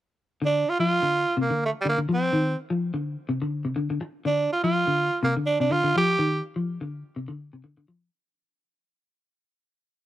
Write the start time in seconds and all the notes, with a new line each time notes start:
0.42 D3 D4
0.69 F4
0.79 F3 F4
1.02 D3
1.37 C3
1.41 A#3
1.50 D3
1.65 A3
1.81 D3 G3
1.89 A#3
1.98 D3
2.09 F3
2.13 C4
2.33 D#3
2.70 F3
2.94 D3
3.29 C3
3.42 D3
3.65 C3
3.76 D3
3.90 D3
4.01 muted clean electric guitar stroke
4.25 D3 D4
4.52 F4
4.64 F3 F4
4.87 D3
5.23 C3 A#3
5.37 D3
5.46 D4
5.60 C3 D4
5.71 D3 F4
5.84 D3
5.96 F3 G4
6.19 D#3
6.56 F3
6.81 D3
7.16 C3
7.28 D3
7.53 C3
7.64 D3
7.77 D3
7.88 F3